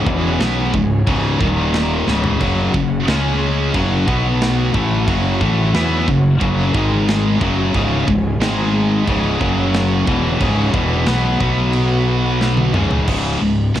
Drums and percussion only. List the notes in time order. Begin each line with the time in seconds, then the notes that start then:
0.06 kick
0.40 snare, crash
0.74 kick
1.07 kick, crash
1.41 kick
1.74 snare, crash
2.08 snare
2.24 floor tom
2.41 kick, crash
2.74 kick
3.08 snare, crash
3.74 kick, crash
4.08 kick
4.42 snare, crash
4.74 kick
5.08 kick, crash
5.41 kick
5.74 snare, crash
6.08 kick
6.41 kick, crash
6.74 kick
7.08 snare, crash
7.41 kick
7.74 kick, crash
8.08 kick
8.41 snare, crash
9.08 kick, crash
9.41 kick
9.74 snare, crash
10.07 kick
10.40 kick, crash
10.74 kick
11.06 snare, crash
11.40 kick
11.73 crash
12.41 snare
12.57 high tom
12.74 mid tom
12.91 floor tom
13.08 kick, crash
13.75 snare, crash